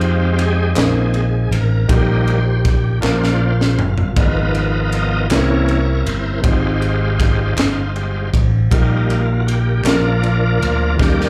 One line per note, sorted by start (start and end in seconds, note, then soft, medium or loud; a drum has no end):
0.00 0.72 F2 loud
0.00 0.73 G#3 medium
0.00 0.74 G#3 medium
0.00 0.37 C4 medium
0.00 0.74 C4 medium
0.00 0.37 D#4 medium
0.00 0.75 D#4 medium
0.00 0.41 F4 medium
0.00 0.75 F4 medium
0.00 0.72 G4 medium
0.00 0.77 C5 medium
0.00 ride bell soft
0.38 0.74 C4 medium
0.38 0.74 D#4 medium
0.38 1.55 G#4 loud
0.38 ride bell medium
0.75 1.48 A#1 loud
0.75 1.26 G#3 medium
0.75 1.89 G#3 medium
0.75 1.86 A#3 medium
0.75 1.26 C4 medium
0.75 1.89 C4 medium
0.75 1.26 D#4 medium
0.75 1.86 D#4 medium
0.75 1.90 F4 medium
0.75 1.90 A#4 medium
0.75 snare loud
0.75 clap loud
0.75 ride bell medium
1.14 ride bell soft
1.51 1.86 A1 loud
1.51 1.91 A#4 medium
1.51 ride bell medium
1.88 2.99 A#1 loud
1.88 2.99 A#2 medium
1.88 2.39 G3 medium
1.88 2.40 A#3 medium
1.88 3.02 D#4 medium
1.88 2.40 D#4 medium
1.88 3.03 G4 medium
1.88 2.99 G4 medium
1.88 1.96 A4 medium
1.88 2.61 C5 medium
1.88 kick medium
1.88 ride bell medium
1.96 3.02 A#4 medium
2.27 ride bell soft
2.65 kick medium
2.65 snare soft
2.65 ride bell medium
3.01 3.75 A#1 loud
3.01 4.12 A#2 medium
3.01 3.52 F3 medium
3.01 3.53 A#3 soft
3.01 4.16 D4 medium
3.01 3.53 D4 medium
3.01 4.15 F4 medium
3.01 4.12 F4 medium
3.01 4.17 A#4 medium
3.01 3.84 C5 medium
3.01 snare medium
3.01 clap loud
3.24 snare medium
3.61 snare medium
3.79 4.14 G1 medium
3.79 floor tom medium
3.98 floor tom medium
4.16 5.26 G#1 medium
4.16 5.26 G#2 medium
4.16 5.26 F3 medium
4.16 5.30 B3 medium
4.16 5.27 B3 medium
4.16 5.30 D#4 medium
4.16 5.27 D#4 medium
4.16 5.30 F4 medium
4.16 5.27 F4 medium
4.16 5.31 G#4 medium
4.16 5.27 A#4 soft
4.16 4.89 B4 medium
4.16 4.24 D5 medium
4.16 kick medium
4.16 ride bell medium
4.25 5.34 D#5 medium
4.55 ride bell soft
4.92 5.29 D#5 loud
4.92 ride bell medium
5.30 6.02 C2 loud
5.30 6.40 C3 medium
5.30 5.81 E3 medium
5.30 6.44 A#3 medium
5.30 5.81 A#3 soft
5.30 6.44 C#4 medium
5.30 5.81 C#4 medium
5.30 6.44 E4 medium
5.30 6.41 E4 medium
5.30 6.44 G4 medium
5.30 6.41 A#4 medium
5.30 6.44 C5 medium
5.30 6.03 C#5 medium
5.30 snare loud
5.30 clap loud
5.30 ride bell medium
5.68 ride bell soft
6.06 6.41 G1 loud
6.06 6.44 C5 medium
6.06 ride bell medium
6.42 7.53 G#1 loud
6.42 7.53 G#2 medium
6.42 6.49 G3 soft
6.42 7.54 G#3 soft
6.42 8.67 C4 medium
6.42 8.67 D#4 medium
6.42 7.94 D#4 medium
6.42 8.68 F4 medium
6.42 8.30 F4 medium
6.42 7.53 G4 medium
6.42 8.30 C5 medium
6.42 8.68 C5 medium
6.42 kick medium
6.42 ride bell medium
6.48 8.70 G#3 medium
6.82 ride bell soft
7.20 kick medium
7.20 snare soft
7.20 ride bell medium
7.57 8.29 G1 loud
7.57 snare loud
7.57 clap medium
7.57 ride bell medium
7.95 8.30 G#3 soft
7.95 8.30 D#4 soft
7.95 8.29 G4 soft
7.95 ride bell soft
8.34 8.68 A1 medium
8.34 kick medium
8.34 ride bell medium
8.71 9.81 A#1 loud
8.71 9.82 A#2 medium
8.71 9.22 G3 medium
8.71 9.82 A#3 medium
8.71 9.85 D#4 medium
8.71 9.22 D#4 medium
8.71 9.42 F4 medium
8.71 9.85 G4 medium
8.71 9.85 A#4 medium
8.71 kick medium
8.71 ride bell medium
9.10 ride bell soft
9.40 9.47 F#4 medium
9.47 9.86 G4 medium
9.47 ride bell medium
9.84 10.57 A#1 loud
9.84 10.95 A#2 medium
9.84 10.95 F3 medium
9.84 10.95 A#3 soft
9.84 10.98 D4 medium
9.84 10.96 D4 medium
9.84 11.00 F4 medium
9.84 10.96 F4 medium
9.84 10.98 A#4 loud
9.84 10.99 A#4 medium
9.84 snare loud
9.84 clap loud
9.84 ride bell medium
10.23 ride bell soft
10.60 10.96 D2 medium
10.60 ride bell medium
10.97 11.29 D#2 loud
10.97 11.29 D#3 medium
10.97 11.29 F3 medium
10.97 11.29 G3 medium
10.97 11.29 G3 soft
10.97 11.29 A#3 medium
10.97 11.29 D4 medium
10.97 11.29 D#4 medium
10.97 11.29 G4 medium
10.97 11.29 A#4 medium
10.97 11.29 D5 medium
10.97 kick medium
11.01 snare medium
11.21 snare soft